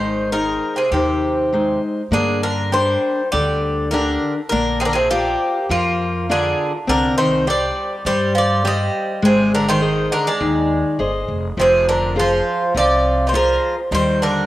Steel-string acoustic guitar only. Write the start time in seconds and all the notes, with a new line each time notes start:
Already playing: G#3
0.32 D#4 G#4 C5
0.93 D#3
1.53 G#3 D#4 C5
2.12 A#3
2.73 D4 G4 A#4
3.33 D3
3.92 D4 G4 A#4
4.52 A#3
5.11 F4 A#4 D5
5.70 F3
6.29 F4 A#4 D5
6.87 C4
7.47 G4 C5 D5
8.07 G3
8.64 G4 C5
9.22 G#3
9.81 G#4 C5 D#5
10.41 D#3
10.99 G#4 C5 D#5
11.57 F3
12.16 F4 G#4 C5
12.75 C3
13.33 F4 G#4 C5
13.92 G3